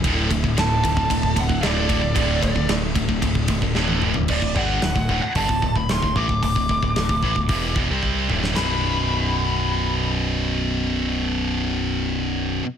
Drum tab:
CC |----------------|----------------|x---------------|----------------|
RD |x-x-x-x-x-x-x-x-|x-x-x-x-x-x-----|----------------|----------------|
HH |----------------|----------------|----o---o---o---|o---o---o-------|
SD |----o-------o---|----o-------o---|----o-------o---|----o----------o|
T1 |----------------|-------------o--|----------------|----------------|
T2 |----------------|--------------o-|----------------|--------------o-|
FT |----------------|---------------o|----------------|----------------|
BD |o-oo--oooooo--o-|o-oo--oooooo----|ooo--oo-oooo-ooo|oooo-oooo-o-o---|

CC |x---------------|----------------|
RD |----------------|----------------|
HH |----------------|----------------|
SD |o---------------|----------------|
T1 |----------------|----------------|
T2 |----------------|----------------|
FT |----------------|----------------|
BD |----------------|----------------|